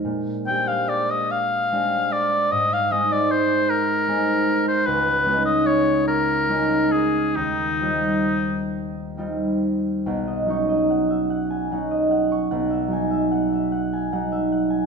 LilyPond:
<<
  \new Staff \with { instrumentName = "Oboe" } { \time 6/8 \key ees \major \tempo 4. = 49 r8 g''16 f''16 d''16 ees''16 f''4 d''8 | ees''16 f''16 ees''16 d''16 c''8 bes'4~ bes'16 c''16 | ces''8. ees''16 des''8 bes'4 aes'8 | ees'4. r4. |
\key b \major r2. | r2. | }
  \new Staff \with { instrumentName = "Harp" } { \time 6/8 \key ees \major << { r2. | r2. | r2. | r2. |
\key b \major fis''16 dis''16 cis'''16 dis''16 fis''16 e''16 fis''16 gis''16 fis''16 dis''16 fis''16 cis'''16 | fis''16 e''16 gis''16 e''16 fis''16 e''16 fis''16 gis''16 fis''16 e''16 fis''16 gis''16 | } \\ { <bes, aes bes c' g' bes'>8 <aes c' d' g'>4. <aes c' d' g'>4 | aes,8 <aes c' ees' aes'>4. <aes c' ees' aes'>4 | des,8 <aes des' ees' f'>4. <aes des' ees' f'>4 | ees,8 <g c' ees' f'>4. <g c' ees' f'>4 |
b,,8 <fis cis' dis'>4. <fis cis' dis'>4 | b,,8 <fis dis'>4. <fis dis'>4 | } >> }
>>